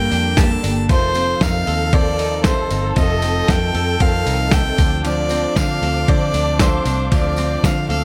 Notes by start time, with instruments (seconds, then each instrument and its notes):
Already playing: steel-string acoustic guitar G3 A#3 D4 A4, clean electric guitar G3 A#3 D4 A4, string section A#3 G4 G5, violin section G4, violin G5
0.11 fingered electric bass F2, clean electric guitar D4, open hi-hat, tambourine
0.37 steel-string acoustic guitar G2 D3 G3 A#3 D4 A4, clean electric guitar G4, violin A5, kick, snare, ride, tambourine
0.51 clean electric guitar A4
0.63 fingered electric bass G1, steel-string acoustic guitar G3 A#3 D4 A4, clean electric guitar D4, open hi-hat, tambourine
0.89 fingered electric bass F1, steel-string acoustic guitar F2 C3 D#3 A3 C4 A4, clean electric guitar F3, violin section A4, string section A4 F5, violin C5, kick, ride, tambourine
1.14 steel-string acoustic guitar D#3 A3 C4 A4, clean electric guitar C4, open hi-hat, tambourine
1.41 fingered electric bass F2, steel-string acoustic guitar F2 C3 D#3 A3 C4 A4, clean electric guitar D#4, violin F5, kick, snare, ride, tambourine
1.67 fingered electric bass D#2, steel-string acoustic guitar D#3 A3 C4 A4, clean electric guitar A4, open hi-hat, tambourine
1.93 steel-string acoustic guitar D#3 A3 C4 A4, clean electric guitar C4, violin D5, kick, ride
2.19 clean electric guitar D#4, open hi-hat, tambourine
2.44 steel-string acoustic guitar F2 C3 D#3 A3 C4 A4, clean electric guitar A4, violin C5, kick, snare, ride, tambourine
2.70 fingered electric bass G1, steel-string acoustic guitar D#3 A3 C4 A4, clean electric guitar D#4, open hi-hat, tambourine
2.96 fingered electric bass F1, steel-string acoustic guitar F2 C3 D#3 A3 C4 A4, clean electric guitar F3, violin D#5, string section G5, kick, ride, tambourine
3.22 steel-string acoustic guitar D#3 A3 C4 A4, clean electric guitar C4, open hi-hat, tambourine
3.48 steel-string acoustic guitar F2 C3 D#3 A3 C4 A4, fingered electric bass F2, clean electric guitar D#4, violin G5, kick, snare, ride, tambourine
3.74 fingered electric bass F2, steel-string acoustic guitar D#3 A3 C4 A4, clean electric guitar A4, open hi-hat
4.00 fingered electric bass F2, steel-string acoustic guitar D#3 A3 C4 A4, clean electric guitar C4, violin F5, kick, ride, tambourine
4.26 fingered electric bass C2, clean electric guitar D#4, open hi-hat, tambourine
4.51 steel-string acoustic guitar F2 C3 D#3 A3 C4 A4, clean electric guitar A4, violin G5, kick, snare, ride, tambourine
4.78 fingered electric bass D2, clean electric guitar F3, steel-string acoustic guitar A3 C4 F4, violin section D4, string section C5 F5 D6, kick, open hi-hat, tambourine
5.04 steel-string acoustic guitar D3 F3 A3 C4 F4, clean electric guitar F3, violin D5, ride, tambourine
5.29 steel-string acoustic guitar A3 C4 F4, clean electric guitar C4, open hi-hat, tambourine
5.56 fingered electric bass D3, steel-string acoustic guitar D3 F3 A3 C4 F4, clean electric guitar D4, violin F5, kick, snare, ride, tambourine
5.82 fingered electric bass D2, steel-string acoustic guitar A3 C4 F4, clean electric guitar A4, open hi-hat
6.08 fingered electric bass D3, steel-string acoustic guitar F3 A3 C4 F4, clean electric guitar C4, violin D5, kick, ride
6.34 fingered electric bass D2, clean electric guitar D4, open hi-hat, tambourine
6.59 steel-string acoustic guitar D3 F3 A3 C4 F4, clean electric guitar A4, violin C5, kick, snare, ride, tambourine
6.85 fingered electric bass C2, steel-string acoustic guitar A3 C4 F4, clean electric guitar D4, open hi-hat, tambourine
7.11 fingered electric bass D2, steel-string acoustic guitar D3 F3 A3 C4 F4, clean electric guitar F3, violin D5, kick, ride, tambourine
7.36 steel-string acoustic guitar A3 C4 F4, clean electric guitar C4, open hi-hat, tambourine
7.63 steel-string acoustic guitar D3 F3 A3 C4 F4, fingered electric bass D3, clean electric guitar D4, violin F5, kick, snare, ride, tambourine
7.89 fingered electric bass D2, steel-string acoustic guitar A3 C4 F4, clean electric guitar A4, violin F5, open hi-hat